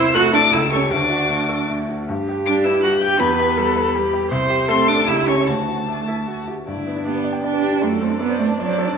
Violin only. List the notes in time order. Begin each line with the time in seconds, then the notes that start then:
Already playing: E6
0.14 F#6
0.34 D6
0.53 E6
0.72 C#6
0.92 D6
2.46 D6
2.64 E6
2.83 F#6
3.02 G6
3.20 B5
4.69 C6
4.88 D6
5.08 E6
5.28 C#6
5.47 A5
6.67 D5
7.06 D5
7.44 D5
7.82 D5
8.59 D5